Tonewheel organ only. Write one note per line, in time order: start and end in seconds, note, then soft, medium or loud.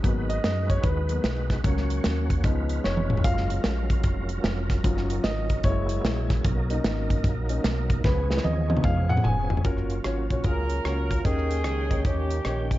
0.00 1.63 G#3 medium
0.00 1.61 D#4 medium
0.00 1.63 B4 medium
0.04 1.62 F#4 medium
1.63 2.43 A#3 medium
1.63 2.42 C#4 medium
1.63 2.43 F#4 medium
1.63 2.43 C#5 medium
2.43 3.23 G#3 medium
2.43 4.82 C#4 medium
2.43 4.82 F4 medium
2.43 3.23 B4 medium
3.25 8.01 F#3 medium
3.25 5.62 A#4 medium
4.84 5.64 C#4 medium
4.84 5.64 D#4 medium
5.64 6.43 A#3 medium
5.64 6.44 E4 medium
5.64 6.44 G#4 medium
6.45 8.03 A#3 medium
6.45 8.03 D#4 medium
6.45 8.03 A#4 medium
8.04 9.63 F3 medium
8.04 9.63 B3 medium
8.04 9.63 C#4 medium
8.04 9.63 G#4 medium
9.64 11.23 F#3 medium
9.64 12.78 A#3 medium
9.64 11.23 C#4 medium
9.64 11.23 F4 medium
11.26 12.78 D#3 medium
11.26 12.78 C#4 medium
11.26 12.78 G5 medium